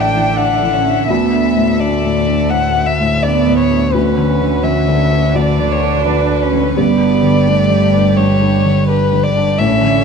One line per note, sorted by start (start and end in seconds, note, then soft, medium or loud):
0.00 1.11 A1 soft
0.00 1.12 A2 soft
0.00 1.11 D3 soft
0.00 3.93 D3 soft
0.00 0.14 E3 soft
0.00 0.39 D4 soft
0.00 0.74 D4 medium
0.00 3.92 A4 soft
0.00 3.92 E5 soft
0.00 0.39 G5 soft
0.14 0.52 E3 soft
0.37 0.76 D4 soft
0.37 1.07 F#5 soft
0.62 1.00 E3 soft
0.73 1.08 C#4 medium
0.86 1.10 D4 soft
1.08 6.81 D2 soft
1.08 2.48 D2 soft
1.08 1.81 B3 medium
1.08 1.81 E5 soft
1.32 1.70 D4 soft
1.56 1.94 A2 soft
1.79 2.87 A3 medium
1.79 2.18 D4 soft
1.79 2.52 D5 soft
2.04 2.42 A2 soft
2.27 2.66 D4 soft
2.50 2.91 A2 soft
2.50 2.88 F#5 soft
2.76 3.14 D4 soft
2.87 3.24 E5 soft
3.00 3.38 A2 soft
3.23 3.95 B3 medium
3.23 3.62 D4 soft
3.23 3.57 D5 soft
3.47 3.85 A2 soft
3.58 3.95 C#5 medium
3.71 3.95 D4 soft
3.93 5.32 D2 soft
3.93 9.55 D3 soft
3.93 5.35 C#4 medium
3.93 6.79 F#4 soft
3.93 4.65 B4 soft
3.93 9.59 B4 soft
4.18 4.40 D3 soft
4.42 4.62 D3 soft
4.63 4.87 D3 soft
4.63 5.37 E5 soft
4.88 5.26 D3 soft
5.11 5.50 D4 soft
5.33 6.73 D2 soft
5.33 6.43 D4 medium
5.33 5.73 D5 soft
5.60 5.98 D3 soft
5.72 6.05 C#5 soft
5.83 6.21 D4 soft
6.05 6.44 D3 soft
6.05 6.79 B4 soft
6.30 6.68 D4 soft
6.42 6.76 C#4 medium
6.53 6.77 D3 soft
6.77 9.61 G1 medium
6.77 8.13 G2 soft
6.77 7.49 B3 medium
6.77 9.58 G4 soft
6.77 8.18 D5 soft
7.00 7.38 D4 soft
7.22 7.60 D3 soft
7.46 8.53 A3 medium
7.46 7.84 D4 soft
7.70 8.08 D3 soft
7.94 8.32 D4 soft
8.17 8.56 D3 soft
8.17 8.88 C#5 soft
8.41 8.79 D4 soft
8.65 9.03 D3 soft
8.88 9.26 D4 soft
8.88 9.25 B4 medium
9.13 9.49 D3 soft
9.23 9.60 D5 medium
9.37 9.59 D4 soft
9.57 10.04 A1 medium
9.57 10.04 A2 medium
9.57 10.04 D3 medium
9.57 10.04 C#4 loud
9.57 10.04 E4 medium
9.57 10.04 A4 medium
9.57 10.04 E5 medium
9.82 10.04 D3 soft